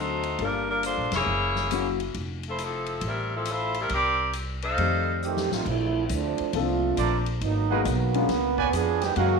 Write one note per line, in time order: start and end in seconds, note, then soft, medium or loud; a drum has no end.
0.00 0.35 D2 medium
0.00 0.19 F#3 medium
0.00 0.40 A3 medium
0.00 0.19 C4 soft
0.00 0.19 D4 soft
0.00 0.20 D#4 soft
0.00 0.40 D#4 medium
0.00 0.41 F#4 medium
0.00 0.20 A4 medium
0.00 0.41 C5 medium
0.23 ride soft
0.39 0.94 G1 medium
0.39 1.06 G3 soft
0.39 0.68 G3 medium
0.39 1.07 A#3 soft
0.39 1.07 D4 soft
0.39 1.07 F4 soft
0.39 0.68 F4 medium
0.39 1.07 A4 soft
0.39 0.68 A#4 medium
0.39 kick soft
0.39 ride soft
0.43 0.68 D4 medium
0.69 0.83 G3 medium
0.69 0.83 D4 medium
0.69 0.83 F4 medium
0.69 0.83 A#4 medium
0.83 1.11 A3 medium
0.83 1.11 D4 medium
0.83 1.11 F4 medium
0.83 1.11 C5 medium
0.83 hi-hat pedal medium
0.83 ride medium
0.98 1.11 A#1 medium
1.12 1.26 F1 medium
1.12 1.97 A#3 medium
1.12 1.97 E4 medium
1.12 1.97 G#4 medium
1.12 1.97 C#5 medium
1.12 snare medium
1.12 ride medium
1.26 2.10 F#1 medium
1.56 snare soft
1.71 1.97 F#3 medium
1.71 1.98 A#3 soft
1.71 1.98 C#4 medium
1.71 1.98 E4 soft
1.71 1.98 F#4 medium
1.71 hi-hat pedal medium
1.71 ride medium
2.00 ride soft
2.14 2.98 F1 medium
2.14 kick soft
2.14 ride medium
2.43 2.60 C5 medium
2.43 ride soft
2.48 2.60 A3 medium
2.48 2.60 E4 medium
2.48 2.60 F4 medium
2.58 hi-hat pedal soft
2.58 ride medium
2.63 3.05 F3 medium
2.63 3.05 C4 medium
2.63 3.05 E4 medium
2.63 3.05 A4 medium
2.86 ride soft
3.01 3.86 A1 medium
3.01 kick soft
3.01 ride medium
3.06 3.32 G3 medium
3.06 3.32 C4 medium
3.06 3.32 E4 medium
3.06 3.31 A#4 medium
3.35 3.49 F3 medium
3.35 3.49 C4 medium
3.35 3.48 E4 medium
3.35 3.48 A4 medium
3.45 hi-hat pedal soft
3.45 ride medium
3.50 3.77 A3 medium
3.50 3.77 E4 medium
3.50 3.78 F4 medium
3.50 3.77 C5 loud
3.74 ride soft
3.79 3.91 G3 medium
3.79 3.92 C4 medium
3.79 3.92 E4 medium
3.79 3.92 A#4 medium
3.89 4.74 C2 medium
3.89 4.33 A#4 medium
3.89 kick soft
3.89 ride medium
3.94 4.33 C4 medium
3.94 4.33 G4 medium
3.94 4.33 D5 medium
4.33 hi-hat pedal soft
4.33 ride medium
4.62 5.18 D#4 medium
4.62 5.18 A4 medium
4.62 5.18 C5 medium
4.62 5.18 F5 loud
4.62 ride soft
4.78 5.47 F2 medium
4.78 5.45 D#3 soft
4.78 5.45 A3 soft
4.78 5.46 C4 soft
4.78 5.46 G4 medium
4.78 5.46 D5 soft
4.78 kick soft
4.78 ride medium
5.22 5.50 D#3 medium
5.22 5.50 A3 medium
5.22 5.50 C4 medium
5.22 5.50 G4 medium
5.22 hi-hat pedal medium
5.37 snare medium
5.51 5.65 A1 medium
5.51 5.67 A3 medium
5.51 5.66 C4 medium
5.51 5.66 D#4 medium
5.51 5.66 F4 medium
5.51 snare medium
5.65 6.08 A#1 medium
5.65 6.06 F3 medium
5.65 kick medium
5.65 crash medium
5.70 6.07 A3 medium
5.70 6.05 C4 medium
5.70 6.07 E4 medium
6.07 6.36 D2 medium
6.07 6.10 C4 medium
6.07 kick soft
6.07 hi-hat pedal medium
6.07 ride medium
6.12 6.55 F3 medium
6.12 6.53 A3 medium
6.12 6.53 C4 medium
6.12 6.53 D4 medium
6.38 muted upright bass stroke soft
6.38 ride soft
6.53 6.96 C2 medium
6.53 7.21 F3 medium
6.53 7.23 A3 medium
6.53 7.21 A#3 soft
6.53 7.23 C4 medium
6.53 7.21 C4 medium
6.53 7.23 D4 medium
6.53 7.22 D4 soft
6.53 7.23 F4 medium
6.53 7.22 A4 medium
6.53 kick soft
6.53 ride medium
6.97 7.40 A#1 medium
6.97 7.17 A4 medium
6.97 7.17 A#4 medium
6.97 7.17 C5 medium
6.97 7.17 D5 medium
6.97 kick soft
6.97 hi-hat pedal medium
6.97 ride medium
7.26 ride soft
7.41 7.84 G#1 medium
7.41 7.83 F#3 medium
7.41 7.82 A#3 medium
7.41 7.83 B3 medium
7.41 7.83 D#4 medium
7.41 kick soft
7.41 ride medium
7.70 7.84 G#3 medium
7.70 7.84 A#3 medium
7.70 7.84 B3 medium
7.70 7.85 D#4 medium
7.70 7.85 F#4 medium
7.70 7.81 G#4 medium
7.70 7.81 A#4 medium
7.70 7.81 B4 medium
7.70 7.80 F#5 medium
7.85 8.28 B1 medium
7.85 8.29 D#3 medium
7.85 8.29 F#3 medium
7.85 8.73 A#3 medium
7.85 8.72 B3 medium
7.85 kick soft
7.85 hi-hat pedal medium
7.85 ride medium
8.14 8.28 G#3 medium
8.14 8.28 B3 medium
8.14 8.28 C#4 medium
8.14 8.28 D4 medium
8.14 8.29 F4 medium
8.14 ride soft
8.29 8.71 C#2 medium
8.29 kick soft
8.29 snare soft
8.29 ride medium
8.58 8.68 B4 medium
8.58 8.68 C#5 medium
8.58 8.68 D5 medium
8.58 8.68 G#5 medium
8.58 kick medium
8.73 9.15 F2 medium
8.73 9.02 F3 loud
8.73 9.02 B3 loud
8.73 9.02 D4 loud
8.73 9.02 G#4 loud
8.73 kick soft
8.73 hi-hat pedal medium
8.73 ride medium
9.02 9.18 D#3 medium
9.02 9.16 G#3 medium
9.02 9.17 B3 medium
9.02 9.17 G4 loud
9.02 snare soft
9.02 ride soft
9.16 9.40 F#2 medium
9.16 9.40 C#3 medium
9.16 9.40 F#3 medium
9.16 9.40 G#3 medium
9.16 9.40 G#3 soft
9.16 9.40 A#3 medium
9.16 9.40 A#3 soft
9.16 9.40 C#4 soft
9.16 9.40 F#4 loud
9.16 9.36 G#4 medium
9.16 9.36 A#4 medium
9.16 9.37 F5 medium
9.16 9.40 F5 medium
9.16 9.36 F#5 medium
9.16 kick soft
9.16 ride medium